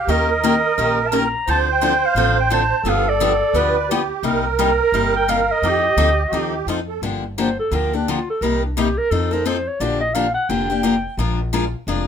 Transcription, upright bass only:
0.07 0.63 D#2 medium
0.78 1.33 A#1 medium
1.48 2.03 D2 medium
2.15 2.71 A1 medium
2.83 3.40 G1 medium
3.53 4.09 D2 medium
4.23 4.79 C2 medium
4.92 5.48 G1 medium
5.62 5.90 F2 medium
5.97 6.27 D2 medium
6.32 6.62 D#2 medium
6.67 6.97 F2 medium
7.02 7.57 G1 medium
7.71 8.27 D2 medium
8.41 8.97 C2 medium
9.11 9.66 F2 medium
9.80 10.35 A#1 medium
10.49 11.05 F1 medium
11.17 11.73 A#1 medium
11.87 12.07 F1 medium

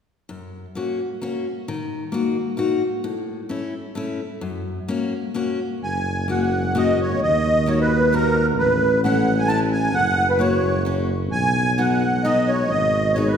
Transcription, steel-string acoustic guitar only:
0.29 0.65 F#2 soft
0.75 0.98 A#3 soft
0.75 0.99 C#4 soft
0.75 0.99 F#4 soft
1.22 1.44 A#3 soft
1.22 1.45 C#4 soft
1.22 1.45 F#4 medium
1.68 2.03 D#3 medium
2.12 2.35 A#3 soft
2.12 2.36 D#4 soft
2.12 2.36 F#4 soft
2.57 2.81 A#3 soft
2.57 2.81 D#4 soft
2.57 2.82 F#4 medium
3.04 3.40 A2 medium
3.49 3.73 A3 soft
3.49 3.73 C#4 soft
3.49 3.74 E4 soft
3.95 4.19 A3 soft
3.95 4.19 C#4 soft
3.95 4.20 E4 medium
4.41 4.78 F#2 medium
4.88 5.12 A#3 medium
4.88 5.12 C#4 soft
4.88 5.13 F#4 soft
5.34 5.58 A#3 soft
5.34 5.59 C#4 soft
5.34 5.59 F#4 medium
6.28 6.51 A#3 soft
6.28 6.52 C#4 soft
6.28 6.52 F#4 soft
6.75 6.98 A#3 medium
6.75 6.98 C#4 soft
6.75 6.99 F#4 medium
7.66 7.89 A#3 soft
7.66 7.90 D#4 soft
7.66 7.90 F#4 soft
8.12 8.35 A#3 soft
8.12 8.35 D#4 soft
8.12 8.36 F#4 medium
9.04 9.26 A3 soft
9.04 9.27 C#4 soft
9.04 9.27 E4 medium
9.48 9.71 A3 soft
9.48 9.72 C#4 soft
9.48 9.72 E4 medium
10.39 10.62 A#3 soft
10.39 10.63 C#4 soft
10.39 10.63 F#4 medium
10.85 11.09 A#3 soft
10.85 11.09 C#4 soft
10.85 11.09 F#4 soft
11.78 12.01 B3 soft
11.78 12.02 D#4 soft
11.78 12.02 F#4 medium
12.25 12.48 B3 soft
12.25 12.48 D#4 medium
12.25 12.48 F#4 medium
13.16 13.37 B3 soft
13.16 13.37 D#4 soft
13.16 13.37 G#4 soft

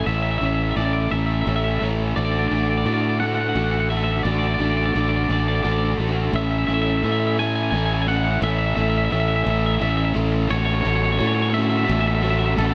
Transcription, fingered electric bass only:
0.07 0.40 A1 medium
0.41 0.75 A1 medium
0.77 1.10 A1 medium
1.12 1.45 A1 medium
1.47 1.80 A1 medium
1.82 2.15 A1 medium
2.17 2.50 A1 medium
2.51 2.84 A1 medium
2.86 3.52 A2 medium
3.55 4.21 A1 medium
4.25 4.58 A1 medium
4.60 4.93 A1 medium
4.96 5.28 A1 medium
5.30 5.62 A1 medium
5.65 5.97 A1 medium
5.98 6.32 A1 medium
6.33 6.67 A1 medium
6.68 7.01 A1 medium
7.03 7.69 A2 medium
7.72 8.38 A1 medium
8.42 8.75 A1 medium
8.77 9.10 A1 medium
9.12 9.45 A1 medium
9.47 9.79 A1 medium
9.82 10.14 A1 medium
10.16 10.49 A1 medium
10.51 10.84 A1 medium
10.85 11.18 A1 medium
11.20 11.86 A2 medium
11.89 12.55 A1 medium
12.58 12.74 A1 loud

